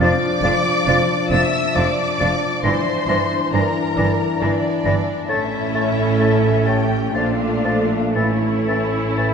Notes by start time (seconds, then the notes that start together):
Already playing: F3
0.00 F2 F3 D4 D5 D6 A6
0.42 F1 F2 F3 D4 D5 A6
0.86 F1 F2 F3 D4 D5 A6
1.31 F1 F2 F3 D4 D5 E5 E6 A6
1.75 F1 F2 F3 D4 D5 D6 A6
2.20 F1 F2 F3 D4 D5 A6
2.63 G1 G2 E3 D4 C5 D5 C6 A#6
3.07 G1 G2 E3 D4 D5 A#6
3.52 G1 G2 E3 D4 A#4 D5 A#5 A#6
3.96 G1 G2 E3 D4 D5 A#6
4.40 G1 G2 E3 D4 D5 A#6
4.85 G1 G2 E3 D4 D5 A#6
5.28 A1 A2 A3 C#4 E4 C#5 E5 A6
5.74 A3 C#5 A6
6.20 A3 C#5 A6
6.66 A3 G4 C#5 G5 A6
7.14 A#1 A#2 F3 A3 D4 F4 D5 F5 A6
7.65 F3 D5 A6
8.15 A1 A2 E3 A3 C#4 E4 C#5 E5 A6
8.67 E3 E5 A6
9.17 E3 E5 A6